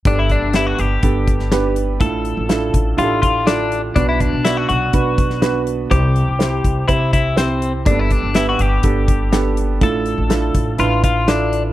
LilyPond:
<<
  \new Staff \with { instrumentName = "Clean electric guitar" } { \time 4/4 \key g \major \tempo 4 = 123 d'16 e'16 d'8 e'16 fis'16 g'2 r8 | a'2 f'8 f'8 d'8. r16 | d'16 e'16 d'8 e'16 fis'16 fis'2 r8 | g'2 e'8 e'8 c'8. r16 |
d'16 e'16 d'8 e'16 fis'16 g'2 r8 | a'2 f'8 f'8 d'8. r16 | }
  \new Staff \with { instrumentName = "Grand piano" } { \time 4/4 \key g \major <b d' g' a'>4 <b d' g' b'>4 <b d' g' a'>4 <b d' g' b'>4 | <d' e' f' a'>4 <d' e' f' a'>4 <d' e' f' g' a'>4 <d' e' f' a'>4 | <b d' fis' b'>4 <b d' fis' d''>4 <b d' fis' b'>4 <b d' fis' b'>4 | <c' e' g' c''>4 <c' e' g' c''>4 <c' e' g' c''>4 <c' e' g' c''>4 |
<bes b d' g' a'>4 <b d' g' b'>4 <b d' g' a'>4 <b d' g' a'>4 | <d' e' f' a'>4 <d' e' f' a'>4 <d' e' f' b'>4 <d' e' f' a'>4 | }
  \new Staff \with { instrumentName = "Grand piano" } { \clef bass \time 4/4 \key g \major g,4. r2 r8 | a,4. r2 r8 | b,4. r2 r8 | c4. r2 r8 |
g,4. r2 r8 | a,4. r2 r8 | }
  \new Staff \with { instrumentName = "Upright bass" } { \clef bass \time 4/4 \key g \major g,,8. g,,8. g,,8 g,,2 | a,,8. a,,8. a,,8 a,,2 | b,,8. b,,8. b,,8 b,,2 | c,8. c,8. c,8 c,2 |
g,,8. g,,8. g,,8 g,,2 | a,,8. a,,8. a,,8 a,,2 | }
  \new DrumStaff \with { instrumentName = "Drums" } \drummode { \time 4/4 <hh bd>8 <hh bd>8 <hh sn>8 hh8 <hh bd>8 <hh bd>16 sn16 <hh sn>8 hh8 | <hh bd>8 hh8 <hh sn>8 <hh bd>8 hh8 <hh bd>8 <hh sn>8 hh8 | <hh bd>8 <hh bd>8 <hh sn>8 hh8 <hh bd>8 <hh bd>16 sn16 <hh sn>8 hh8 | <hh bd>8 hh8 <hh sn>8 <hh bd>8 <hh bd>8 <hh bd>8 <hh sn>8 hh8 |
<hh bd>8 <hh bd>8 <hh sn>8 hh8 <hh bd>8 <hh bd>8 <hh sn>8 hh8 | <hh bd>8 hh8 <hh sn>8 <hh bd>8 hh8 <hh bd>8 <hh sn>8 hh8 | }
>>